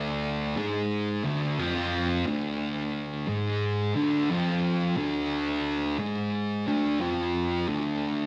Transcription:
Already playing: D2 D3
0.57 G#2 G#3
1.24 D2 D3
1.58 F2 F3
2.26 D2 D3
3.28 G#2 G#3
3.95 D2 D3
4.30 F2 F3
4.97 D2 D3
5.99 G#2 G#3
6.66 D2 D3
7.00 F2 F3
7.68 D2 D3

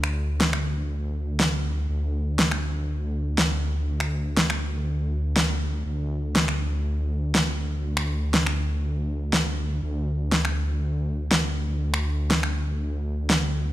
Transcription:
Already playing: D2
0.04 finger snap
0.41 snare
0.53 finger snap
1.40 snare
1.89 D2
2.39 snare
2.51 finger snap
3.38 snare
4.00 finger snap
4.37 snare
4.50 finger snap
5.36 snare
5.86 D2
6.36 snare
6.48 finger snap
7.35 snare
7.97 finger snap
8.34 snare
8.46 finger snap
9.33 snare
9.83 D2
10.32 snare
10.45 finger snap
11.31 snare
11.94 finger snap
12.31 snare
12.43 finger snap
13.30 snare

